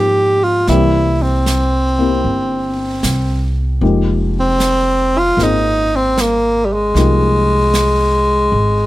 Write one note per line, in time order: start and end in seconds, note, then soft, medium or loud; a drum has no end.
0.00 0.63 G#2 medium
0.00 0.68 D#3 soft
0.00 0.68 F3 soft
0.00 0.69 G#3 soft
0.00 0.68 A#3 soft
0.00 0.69 C4 soft
0.00 0.70 C#4 soft
0.00 0.69 D#4 soft
0.00 0.70 F4 soft
0.00 0.45 G4 medium
0.43 0.68 F4 medium
0.67 2.21 C2 medium
0.67 3.83 E3 soft
0.67 3.83 G3 soft
0.67 1.97 A#3 soft
0.67 1.98 C4 soft
0.67 1.24 E4 medium
0.67 2.00 G4 soft
0.67 brush sweep soft
0.67 snare soft
1.22 3.57 C4 medium
1.46 snare soft
1.46 hi-hat pedal soft
1.99 3.81 A#3 soft
1.99 3.82 C4 soft
1.99 3.83 E4 soft
1.99 3.81 G4 soft
2.24 2.99 G1 medium
2.24 brush sweep soft
3.03 3.78 C2 medium
3.03 snare soft
3.03 hi-hat pedal medium
3.81 5.34 F1 medium
3.81 6.94 F3 soft
3.81 6.94 G#3 soft
3.81 5.36 A#3 soft
3.81 6.95 D#4 soft
3.81 6.95 G4 soft
3.81 brush sweep soft
4.40 5.20 C4 medium
4.60 snare soft
4.60 hi-hat pedal medium
5.18 5.45 F4 medium
5.37 6.91 G#1 medium
5.37 6.94 A#3 soft
5.37 6.95 C4 soft
5.37 6.96 F4 soft
5.37 6.97 G#4 soft
5.37 brush sweep soft
5.37 snare soft
5.43 5.97 D#4 medium
5.96 6.22 C4 medium
6.18 6.66 A#3 medium
6.18 snare soft
6.18 hi-hat pedal soft
6.65 6.74 G3 soft
6.73 8.87 G#3 medium
6.94 8.48 C2 medium
6.94 8.87 F3 soft
6.94 8.87 G#3 soft
6.94 8.87 A#3 soft
6.94 8.87 D#4 soft
6.94 8.87 G4 soft
6.94 brush sweep soft
6.94 snare soft
7.74 snare soft
7.74 hi-hat pedal soft
8.52 8.87 G#1 medium
8.52 brush sweep soft